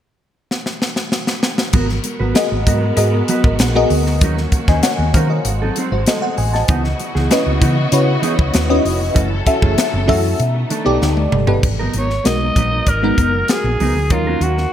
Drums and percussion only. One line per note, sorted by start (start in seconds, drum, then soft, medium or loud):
0.51 snare medium
0.66 snare medium
0.82 snare medium
0.96 snare medium
1.12 snare medium
1.27 snare medium
1.43 snare medium
1.58 snare medium
1.73 kick loud
1.73 crash medium
1.89 snare soft
2.04 closed hi-hat medium
2.35 snare loud
2.35 closed hi-hat medium
2.67 kick medium
2.67 closed hi-hat medium
2.97 closed hi-hat medium
3.28 closed hi-hat medium
3.44 kick medium
3.59 snare loud
3.59 closed hi-hat medium
3.90 open hi-hat medium
4.06 snare soft
4.21 kick loud
4.21 closed hi-hat medium
4.38 snare soft
4.52 kick medium
4.52 closed hi-hat medium
4.68 kick medium
4.68 snare soft
4.83 snare loud
4.83 closed hi-hat medium
5.14 kick loud
5.14 closed hi-hat medium
5.45 closed hi-hat medium
5.76 closed hi-hat medium
6.07 snare loud
6.07 closed hi-hat medium
6.38 open hi-hat medium
6.55 snare soft
6.68 kick loud
6.68 closed hi-hat medium
6.84 snare soft
7.00 closed hi-hat medium
7.16 snare soft
7.31 snare loud
7.31 closed hi-hat medium
7.62 kick medium
7.62 closed hi-hat medium
7.92 closed hi-hat medium
8.23 closed hi-hat medium
8.39 kick medium
8.54 snare loud
8.54 closed hi-hat medium
8.86 open hi-hat medium
9.16 kick loud
9.16 closed hi-hat medium
9.46 kick medium
9.46 closed hi-hat medium
9.62 kick medium
9.78 snare loud
9.78 closed hi-hat medium
10.09 kick medium
10.09 open hi-hat medium
10.40 closed hi-hat medium
10.70 closed hi-hat medium
11.02 snare medium
11.17 high tom medium
11.32 mid tom medium
11.47 floor tom medium
11.63 kick loud
11.63 crash medium
11.94 closed hi-hat medium
12.10 snare soft
12.25 snare loud
12.25 closed hi-hat medium
12.56 kick medium
12.56 closed hi-hat medium
12.87 kick medium
12.87 closed hi-hat medium
13.18 kick medium
13.18 closed hi-hat medium
13.48 snare loud
13.48 closed hi-hat medium
13.80 open hi-hat medium
14.10 kick loud
14.10 closed hi-hat medium
14.41 closed hi-hat medium
14.58 snare soft